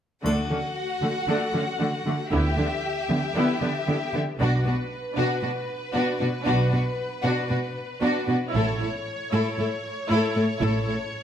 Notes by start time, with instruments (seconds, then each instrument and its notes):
0.24 double bass section D2, cello section D3, viola section A3 D4, violin section F#4 F#5, triangle
0.50 cello section D3, viola section A3 C#4
1.02 cello section D3, viola section A3
1.27 cello section D3, viola section A3 D4
1.54 cello section D3, viola section A3 C#4
1.79 cello section D3, viola section A3 D4
2.06 cello section D3, viola section A3
2.32 double bass section D2, cello section D3, viola section B3 E4, violin section G4 E5
2.57 cello section D3, viola section B3 D4
3.09 cello section D3, viola section B3
3.36 cello section D3, viola section B3 E4
3.62 cello section D3, viola section B3 D4
3.88 cello section D3, viola section B3 E4
4.14 cello section D3, viola section B3
4.39 double bass section B1, cello section B2, viola section D4, violin section F#4 B4
4.64 cello section B2, viola section D4, violin section F#4
5.17 cello section B2, viola section D4, violin section F#4
5.42 cello section B2, viola section D4, violin section F#4
5.93 cello section B2, viola section D4, violin section F#4
6.19 cello section B2, viola section D4, violin section F#4
6.44 double bass section B1, cello section B2, viola section D4, violin section F#4
6.70 cello section B2, viola section D4, violin section F#4
7.23 cello section B2, viola section D4, violin section F#4
7.49 cello section B2, viola section D4, violin section F#4
8.01 cello section B2, viola section D4, violin section F#4
8.27 cello section B2, viola section D4, violin section F#4
8.53 double bass section A1, cello section A2, viola section E4, violin section A4 C#5
8.79 cello section A2, viola section E4, violin section A4
9.31 cello section A2, viola section E4, violin section A4
9.58 cello section A2, viola section E4, violin section A4
10.09 cello section A2, viola section E4, violin section A4
10.34 cello section A2, viola section E4, violin section A4
10.60 double bass section A1, cello section A2, viola section E4, violin section A4
10.85 cello section A2, viola section E4, violin section A4